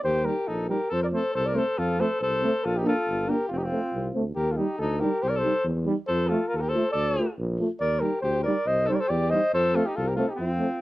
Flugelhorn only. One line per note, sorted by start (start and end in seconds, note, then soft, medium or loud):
0.04 0.26 C5 loud
0.25 0.49 A#4 medium
0.47 0.68 A4 loud
0.69 0.94 A#4 medium
0.93 1.03 C5 medium
1.04 1.08 D5 medium
1.13 1.32 C5 medium
1.34 1.47 C5 medium
1.46 1.57 D5 medium
1.55 1.80 C5 medium
1.79 2.01 A4 medium
2.00 2.21 C5 medium
2.21 2.65 C5 loud
2.64 2.77 A4 medium
2.76 2.85 G4 medium
2.87 3.30 A4 medium
3.28 3.47 A#4 medium
3.48 3.59 F4 medium
3.57 3.67 G4 medium
3.66 4.15 F4 medium
4.35 4.53 A#4 medium
4.52 4.58 A4 medium
4.57 4.77 G4 medium
4.78 5.00 A4 medium
4.99 5.24 A#4 medium
5.22 5.31 C5 loud
5.30 5.40 D5 medium
5.38 5.66 C5 loud
6.07 6.28 C5 loud
6.27 6.49 A4 medium
6.48 6.58 A#4 medium
6.56 6.60 A4 medium
6.56 6.70 A#4 medium
6.69 6.90 C5 medium
6.91 7.33 D5 loud
7.81 8.02 D5 loud
8.00 8.21 A#4 medium
8.21 8.42 C5 medium
8.44 8.68 D5 loud
8.66 8.91 D#5 loud
8.90 8.97 C5 loud
8.95 9.02 D5 medium
9.00 9.11 C5 loud
9.10 9.31 D5 loud
9.30 9.52 D#5 loud
9.54 9.77 C5 loud
9.75 9.87 A4 loud
9.86 9.97 G4 medium
9.96 10.09 A4 loud
10.07 10.17 A#4 medium
10.18 10.32 A4 medium
10.31 10.39 G4 medium
10.40 10.81 F4 medium